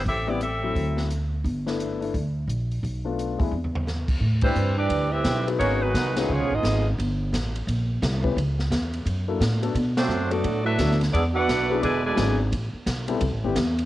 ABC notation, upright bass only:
X:1
M:4/4
L:1/8
Q:"Swing" 1/4=174
K:Ador
V:1 name="Upright bass" clef=bass
A,,,4 D,,4 | G,,,4 D,,2 _B,,,2 | B,,,3 _E,, =E,,4 | A,,2 G,,2 D,,2 B,,,2 |
_A,,,2 C,,2 (3^C,, B,,, ^G,,, G,,,2 | G,,,2 A,,,2 _B,,,2 C,,2 | ^C,,2 E,,2 F,,2 A,,2 | B,,2 F,,2 A,,2 D,,2 |
E,,2 B,,,2 E,,,2 ^G,,,2 | A,,, z B,,,2 (3C,, A,,, G,,, E,,2 |]